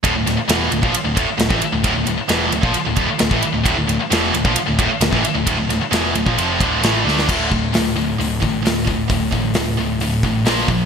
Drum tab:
CC |----------------|----------------|----------------|----------------|
RD |x-x-x-x-x-x-x-x-|x-x-x-x-x-x-x-x-|x-x-x-x-x-x-x-x-|x-x-x-x-x-x-x---|
HH |----------------|----------------|----------------|----------------|
SD |--o-o-------o---|----o-------o---|----o-------o---|--o-o-------o-oo|
BD |o------o--o--o--|o------o--o--o--|o------o--o--o--|o------o--o-----|

CC |x---------------|----------------|
RD |----------------|----------------|
HH |----o---o---o---|o---o---o---o---|
SD |----o-------o---|----o-------o---|
BD |o-o-------o---o-|o-o-------o---o-|